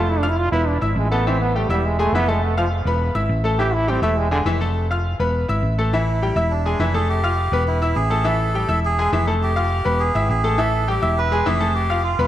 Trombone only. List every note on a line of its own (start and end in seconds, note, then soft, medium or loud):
0.00 0.11 F4 loud
0.10 0.21 E4 loud
0.19 0.30 D4 medium
0.29 0.40 E4 medium
0.39 0.51 F4 loud
0.52 0.69 E4 loud
0.68 0.80 D4 medium
0.81 0.97 F3 soft
0.97 1.11 G#3 medium
1.11 1.29 B3 loud
1.28 1.41 C4 medium
1.41 1.58 B3 medium
1.56 1.70 A3 medium
1.70 1.87 G3 medium
1.86 1.99 G#3 medium
2.00 2.16 A3 loud
2.14 2.31 B3 loud
2.29 2.45 G#3 medium
2.44 2.58 A3 medium
2.59 2.67 F3 medium
3.59 3.76 G4 loud
3.74 3.91 E4 loud
3.90 4.03 C4 medium
4.03 4.19 A3 medium
4.18 4.31 G#3 medium
4.32 4.41 D3 medium